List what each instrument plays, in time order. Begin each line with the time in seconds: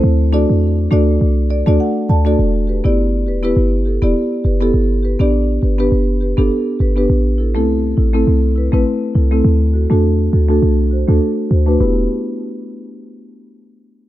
0.04 808-style bass D2
0.32 marimba A3 D4 F#4 A4 D5
0.50 808-style bass E2
0.91 808-style bass D2, marimba A3 D4 F#4 A4 D5
1.21 808-style bass C2
1.50 marimba A4 D5
1.66 808-style bass D2, marimba A3 D4 F#4 A4 D5
1.80 marimba F#5
2.09 808-style bass D2, marimba A4 D5 A5
2.25 marimba A3 D4 F#4 A4 D5
2.39 808-style bass E1
2.67 marimba G4 B4
2.84 808-style bass G1, marimba B3 E4 G4 D5
3.26 808-style bass E1, marimba G4 B4
3.43 marimba B3 E4 G4 B4
3.57 808-style bass G1
3.85 marimba G4 A4
4.02 808-style bass E1, marimba B3 E4 G4 D5
4.44 808-style bass F#1, marimba G4 B4
4.61 marimba B3 E4 G4 A4
4.74 808-style bass G1
5.03 marimba G4 B4
5.19 808-style bass A1, marimba B3 D4 G4 D5
5.62 808-style bass G1, marimba G4 B4
5.78 marimba B3 D4 G4 B4
5.92 808-style bass F#1
6.21 marimba G4 B4
6.37 808-style bass G1, marimba B3 D4 G4 A4
6.79 808-style bass G1, marimba G4 B4
6.96 marimba B3 D4 G4 B4
7.10 808-style bass A1
7.38 marimba E4 A4
7.55 808-style bass C2, marimba A3 C4 E4 A4
7.97 808-style bass A1, marimba E4 A4
8.13 marimba A3 C4 E4 A4
8.27 808-style bass C2
8.56 marimba E4 B4
8.72 808-style bass A1, marimba A3 C4 E4 B4
9.15 808-style bass C2, marimba E4 A4
9.31 marimba A3 C4 E4 A4
9.45 808-style bass D2
9.73 marimba F#4 A4
9.90 808-style bass E2, marimba A3 D4 F#4 A4
10.32 808-style bass D2, marimba F#4 A4
10.49 marimba A3 D4 F#4 A4
10.63 808-style bass C2
10.91 marimba F#4 C5
11.07 808-style bass D2, marimba A3 D4 F#4 A4
11.50 808-style bass D2, marimba F#4 C5
11.66 marimba A3 D4 F#4 B4
11.80 808-style bass E1, marimba B3 E4 G4 B4